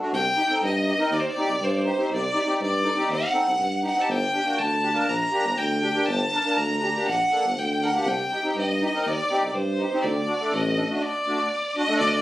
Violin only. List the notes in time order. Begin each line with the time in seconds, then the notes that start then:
0.14 G5
0.65 D#5
1.13 D5
1.20 C5
1.29 D5
1.64 C5
1.69 D5
1.77 C5
2.13 D5
2.62 D5
3.12 F#5
3.87 F#5
4.01 A5
4.11 G5
4.59 A5
5.09 A#5
5.57 G5
6.06 A5
6.57 A#5
7.07 F#5
7.58 G5
7.83 F#5
8.08 G5
8.58 D#5
9.07 D5
9.48 D5
9.55 C5
10.02 D5
10.53 D#5
10.96 D#5
11.02 D5
11.77 D#5
11.98 D5
12.08 D#5
12.13 D5